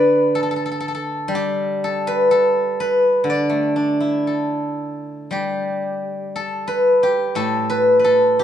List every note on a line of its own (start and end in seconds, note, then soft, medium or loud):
0.00 2.27 D3 soft
0.00 1.87 B4 medium
0.00 1.60 D5 medium
0.00 0.84 E5 medium
0.35 0.42 A4 medium
0.43 0.51 A4 soft
0.51 0.56 A4 soft
0.56 0.65 A4 soft
0.66 0.71 A4 soft
0.71 0.80 A4 soft
0.80 0.88 A4 soft
0.88 0.94 A4 soft
0.95 1.84 A4 soft
1.28 4.26 G3 medium
1.35 3.70 G4 medium
1.84 2.31 A4 medium
2.07 2.80 B4 medium
2.31 4.27 A4 medium
2.80 4.85 B4 medium
3.24 6.34 D3 soft
3.30 5.14 D5 medium
3.50 5.58 A3 soft
3.76 5.84 D4 soft
4.00 6.10 E4 soft
4.27 6.34 A4 soft
5.31 8.39 G3 soft
5.31 7.03 G4 medium
6.36 7.35 A4 medium
6.67 7.69 B4 medium
7.03 8.39 G4 medium
7.35 8.44 A2 soft
7.35 8.04 A4 medium
7.70 7.99 B4 medium
7.99 8.44 B4 soft
8.04 8.44 A4 medium
8.39 8.44 G4 medium